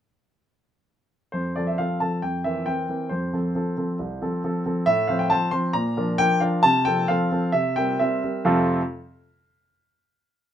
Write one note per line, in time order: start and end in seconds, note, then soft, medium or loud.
1.32 1.55 F2 soft
1.32 1.55 C5 medium
1.56 1.77 F3 soft
1.56 1.77 C4 soft
1.56 1.77 A4 soft
1.56 1.67 D5 medium
1.67 1.78 E5 medium
1.78 1.99 F3 soft
1.78 1.99 C4 soft
1.78 1.99 A4 soft
1.78 2.01 F5 medium
2.00 2.21 F3 soft
2.00 2.21 C4 soft
2.00 2.21 A4 soft
2.00 2.23 A5 medium
2.22 2.45 F2 soft
2.22 2.45 G5 medium
2.44 2.65 E3 soft
2.44 2.65 C4 soft
2.44 2.66 A#4 soft
2.44 2.67 E5 medium
2.66 2.87 E3 soft
2.66 2.86 C4 soft
2.66 2.87 A#4 soft
2.66 3.10 G5 medium
2.89 3.09 E3 soft
2.89 3.09 C4 soft
2.89 3.09 A#4 soft
3.09 3.32 F2 medium
3.09 4.64 C5 medium
3.33 3.53 F3 soft
3.33 3.53 C4 soft
3.33 3.53 A4 soft
3.55 3.75 F3 soft
3.55 3.75 C4 soft
3.55 3.75 A4 soft
3.77 3.97 F3 soft
3.77 3.98 C4 soft
3.77 3.98 A4 soft
3.99 4.21 C2 soft
4.22 4.41 F3 soft
4.22 4.41 C4 soft
4.22 4.42 A4 soft
4.44 4.63 F3 soft
4.44 4.63 C4 soft
4.44 4.64 A4 medium
4.66 4.85 F3 soft
4.66 4.85 C4 soft
4.66 4.85 A4 soft
4.86 5.08 A2 medium
4.86 5.08 E5 loud
5.08 5.28 F3 soft
5.08 5.29 C4 soft
5.08 5.29 C5 medium
5.08 5.19 F5 medium
5.19 5.30 G5 medium
5.30 5.50 F3 medium
5.30 5.51 C4 soft
5.30 5.51 C5 medium
5.30 5.52 A5 loud
5.51 5.72 F3 medium
5.51 5.72 C4 soft
5.51 5.73 C5 medium
5.51 5.74 C6 medium
5.73 5.96 A#2 medium
5.73 6.19 A#5 loud
5.97 6.17 F3 medium
5.97 6.18 D4 medium
5.97 6.17 A#4 medium
6.18 6.39 F3 medium
6.18 6.40 D4 medium
6.18 6.40 A#4 medium
6.18 6.41 G5 loud
6.40 6.61 F3 medium
6.40 6.61 D4 medium
6.40 6.62 A#4 medium
6.40 6.63 F5 medium
6.63 6.85 C3 medium
6.63 6.85 A5 loud
6.85 7.06 F3 medium
6.85 7.06 C4 medium
6.85 7.07 A4 medium
6.85 7.08 G5 loud
7.08 7.29 F3 medium
7.08 7.29 C4 medium
7.08 7.30 A4 medium
7.08 7.54 F5 loud
7.31 7.52 F3 medium
7.31 7.52 C4 soft
7.31 7.52 A4 medium
7.52 7.76 C3 medium
7.52 7.76 E5 medium
7.76 7.98 G3 soft
7.76 7.98 C4 soft
7.76 7.98 A#4 medium
7.76 8.00 G5 medium
7.99 8.22 G3 medium
7.99 8.21 C4 medium
7.99 8.22 A#4 medium
7.99 8.47 E5 medium
8.24 8.45 G3 soft
8.24 8.44 C4 soft
8.24 8.45 A#4 soft
8.45 8.71 F2 medium
8.45 8.71 C3 medium
8.45 8.71 A3 medium
8.45 8.72 C4 medium
8.45 8.71 F4 medium
8.45 8.72 A4 medium
8.45 8.71 F5 medium